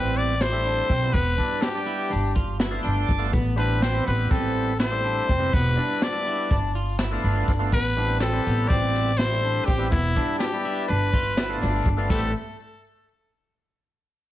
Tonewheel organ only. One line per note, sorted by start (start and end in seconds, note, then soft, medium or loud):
0.00 0.35 G3 medium
0.00 0.35 B3 medium
0.00 0.35 C4 medium
0.00 0.35 E4 medium
0.52 0.92 G3 medium
0.52 0.93 A3 medium
0.52 0.93 C4 medium
0.52 0.93 E4 medium
1.02 1.14 G3 medium
1.02 1.15 B3 medium
1.02 1.15 C4 medium
1.02 1.15 E4 medium
1.39 1.68 G3 medium
1.39 1.69 B3 medium
1.39 1.69 D4 medium
1.39 1.69 E4 medium
1.75 2.12 G3 medium
1.75 2.12 B3 medium
1.75 2.12 D4 medium
1.75 2.12 G4 medium
2.71 3.12 A3 medium
2.71 3.12 B3 medium
2.71 3.12 D4 medium
2.71 3.12 F4 medium
2.83 3.07 G5 medium
3.07 3.31 D5 medium
3.18 3.32 A3 medium
3.18 3.33 B3 medium
3.18 3.33 D4 medium
3.18 3.33 F4 medium
3.56 3.87 G3 medium
3.56 3.87 B3 medium
3.56 3.88 C4 medium
3.56 3.88 E4 medium
3.92 4.73 G3 medium
3.92 4.73 B3 medium
3.92 4.73 C4 medium
3.92 4.74 E4 medium
4.91 5.32 G3 medium
4.91 5.32 A3 medium
4.91 5.32 C4 medium
4.91 5.32 E4 medium
5.38 5.52 G3 medium
5.38 5.52 B3 medium
5.38 5.53 C4 medium
5.38 5.53 E4 medium
5.76 6.07 G3 medium
5.76 6.07 B3 medium
5.76 6.07 D4 medium
5.76 6.07 E4 medium
6.12 6.50 G3 medium
6.12 6.50 B3 medium
6.12 6.50 D4 medium
6.12 6.50 E4 medium
7.11 7.51 A3 medium
7.11 7.51 B3 medium
7.11 7.52 D4 medium
7.11 7.52 F4 loud
7.59 7.72 A3 medium
7.59 7.72 B3 medium
7.59 7.72 D4 medium
7.59 7.72 F4 medium
7.96 8.26 G3 medium
7.96 8.27 B3 medium
7.96 8.27 C4 medium
7.96 8.27 E4 medium
8.33 9.12 G3 medium
8.33 9.13 B3 medium
8.33 9.12 C4 medium
8.33 9.13 E4 medium
9.30 9.70 G3 medium
9.30 9.70 A3 medium
9.30 9.71 C4 medium
9.30 9.71 E4 medium
9.78 9.91 G3 medium
9.78 9.91 B3 medium
9.78 9.91 C4 medium
9.78 9.91 E4 medium
10.16 10.45 G3 medium
10.16 10.45 B3 medium
10.16 10.46 D4 medium
10.16 10.46 E4 medium
10.53 10.89 G3 medium
10.53 10.89 B3 medium
10.53 10.89 D4 medium
10.53 10.89 E4 medium
11.49 11.88 A3 medium
11.49 11.88 B3 medium
11.49 11.89 D4 medium
11.49 11.89 F4 medium
11.97 12.09 A3 medium
11.97 12.09 B3 medium
11.97 12.10 D4 medium
11.97 12.10 F4 loud
12.10 12.32 G3 medium
12.10 12.33 B3 medium
12.10 12.32 C4 medium
12.10 12.32 E4 medium